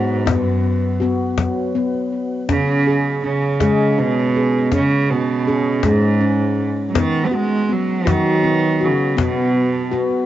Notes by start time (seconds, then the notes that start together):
Already playing: G#2 F#4
0.26 F#2 B3, cajon bass, cajon slap
0.45 cajon slap
0.64 cajon slap
1.00 B3 F#4, cajon slap
1.20 cajon slap
1.38 F#3, cajon bass, cajon slap
1.75 B3
1.94 cajon slap
2.49 C#3 C#4, cajon bass, cajon slap
2.68 cajon slap
2.87 G#4
3.24 C#3 C#4, cajon slap
3.42 cajon slap
3.60 G#3 G#4, cajon bass, cajon slap
3.98 B2 C#4
4.16 cajon slap
4.36 G#4
4.72 C#3 C#4, cajon bass, cajon slap
5.10 B2
5.47 C#4 G#4
5.65 cajon slap
5.83 G#2 G#3, cajon bass, cajon slap
6.01 cajon slap
6.21 C#4
6.40 cajon slap
6.77 cajon slap
6.89 F#3
6.95 D#3 B3, cajon bass, cajon slap
7.26 B3
7.31 G#3 F#4, cajon slap
7.69 F#3 B3, cajon slap
7.89 cajon slap
8.05 F#3 F#4, cajon bass, cajon slap
8.10 D#3
8.43 B3
8.63 cajon slap
8.81 C#3 F#4
9.17 B2 B3, cajon bass, cajon slap
9.37 cajon slap
9.55 cajon slap
9.91 B3 F#4, cajon slap
10.10 cajon slap